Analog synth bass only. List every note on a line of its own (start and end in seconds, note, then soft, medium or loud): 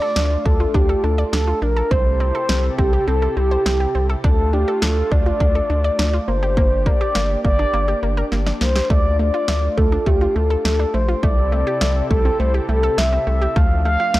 0.16 0.37 D2 loud
0.46 0.66 D2 medium
0.74 0.95 D2 loud
1.04 1.24 D2 loud
1.33 1.53 D2 medium
1.62 1.82 A#1 medium
1.91 2.32 C2 medium
2.49 2.70 C2 medium
2.79 2.99 C2 medium
3.08 3.28 C2 loud
3.37 3.57 C2 medium
3.66 3.86 C2 loud
3.95 4.15 C2 medium
4.24 4.65 D2 loud
4.82 5.03 D2 medium
5.12 5.32 D2 loud
5.40 5.61 D2 loud
5.70 5.90 D2 loud
5.99 6.19 D2 medium
6.28 6.89 G1 loud
7.15 7.36 G1 loud
7.45 7.65 G1 medium
7.74 7.94 G1 loud
8.03 8.23 G1 medium
8.32 8.52 G1 medium
8.61 8.81 C2 medium
8.90 9.31 D2 loud
9.48 9.69 D2 loud
9.78 9.98 D2 loud
10.06 10.27 D2 loud
10.36 10.56 D2 loud
10.65 10.85 D2 medium
10.94 11.14 A#1 medium
11.23 11.64 C2 medium
11.81 12.02 C2 medium
12.11 12.31 C2 loud
12.40 12.60 C2 loud
12.69 12.89 C2 medium
12.98 13.18 C2 loud
13.27 13.47 C2 medium
13.56 13.97 D2 loud
14.14 14.20 D2 medium